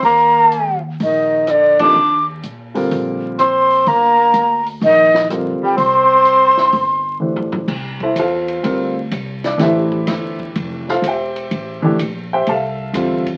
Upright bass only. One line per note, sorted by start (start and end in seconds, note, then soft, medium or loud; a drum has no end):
0.03 0.95 D#2 medium
1.00 1.91 A#1 medium
1.96 2.40 D#2 medium
2.44 2.88 A#2 medium
2.91 3.83 A#1 medium
3.87 4.31 G1 medium
4.34 4.79 D2 medium
4.81 5.58 A#1 medium
5.63 muted upright bass stroke soft
5.77 6.69 C2 medium
6.73 7.65 G1 medium
7.68 8.15 C2 medium
8.15 8.63 E2 medium
8.64 9.11 D2 medium
9.12 9.58 C2 medium
9.60 10.06 A1 medium
10.07 10.54 G1 medium
10.56 11.01 F1 medium
11.02 11.49 E1 medium
11.51 11.97 A1 medium
11.99 12.45 A#1 medium
12.47 12.93 C2 medium
12.93 13.37 E2 medium